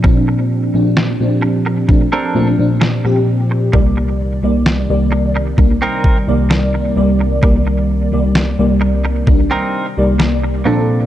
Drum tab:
SD |--o---o-|--o---o-|--o---o-|
BD |o---o---|o---oo--|o---o---|